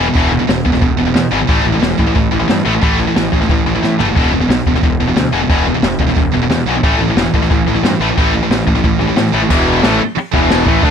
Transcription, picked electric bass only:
0.16 0.37 E1 medium
0.49 0.60 E1 medium
0.66 0.76 E1 medium
0.82 0.93 E1 medium
0.99 1.09 E1 medium
1.14 1.25 E2 medium
1.31 1.42 G#1 medium
1.49 1.60 A1 medium
1.65 1.76 A1 medium
1.82 1.93 E1 medium
1.99 2.10 A1 medium
2.16 2.26 A1 medium
2.33 2.44 A1 medium
2.50 2.60 G2 medium
2.66 2.77 A1 medium
2.83 3.04 A1 medium
3.17 3.27 A1 medium
3.33 3.44 A1 medium
3.49 3.60 A1 medium
3.66 3.77 A1 medium
3.83 3.94 A2 medium
4.00 4.11 F#1 medium
4.16 4.27 E1 medium
4.32 4.43 E1 medium
4.49 4.60 B1 medium
4.66 4.77 E1 medium
4.83 4.94 E1 medium
5.00 5.11 E1 medium
5.16 5.27 D2 medium
5.32 5.43 E1 medium
5.50 5.71 E1 medium
5.83 5.93 E1 medium
5.99 6.10 E1 medium
6.17 6.27 E1 medium
6.33 6.44 E1 medium
6.50 6.61 E2 medium
6.66 6.77 B1 medium
6.84 6.94 A1 medium
6.99 7.10 A1 medium
7.16 7.27 E1 medium
7.34 7.45 A1 medium
7.51 7.61 A1 medium
7.66 7.77 A1 medium
7.84 7.94 G2 medium
8.00 8.11 A1 medium
8.18 8.39 A1 medium
8.50 8.61 A1 medium
8.67 8.78 A1 medium
8.84 8.95 A1 medium
8.99 9.10 A1 medium
9.16 9.27 A2 medium
9.33 9.44 A1 medium
9.51 9.81 E1 loud
9.84 9.99 A1 loud
10.01 muted picked electric bass stroke soft
10.17 muted picked electric bass stroke soft
10.34 10.65 E1 loud
10.67 10.82 A1 medium
10.83 10.90 D2 loud

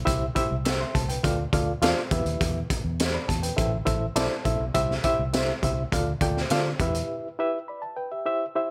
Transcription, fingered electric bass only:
0.07 0.28 C2 medium
0.51 0.83 C2 medium
0.95 1.16 C2 medium
1.23 1.45 D2 loud
1.53 1.74 D2 medium
1.82 1.93 E2 medium
2.11 2.22 E2 loud
2.25 2.36 D#2 medium
2.41 2.62 E2 medium
2.84 3.17 E2 loud
3.29 3.50 E2 medium
3.58 3.79 A1 loud
3.86 4.08 A1 medium
4.16 4.27 B1 medium
4.45 4.56 A#1 medium
4.60 4.71 B1 medium
4.74 4.96 C2 loud
5.19 5.51 C2 loud
5.62 5.84 C2 medium
5.92 6.13 D2 loud
6.21 6.42 D2 medium
6.51 6.72 D3 medium
6.79 7.01 E2 medium

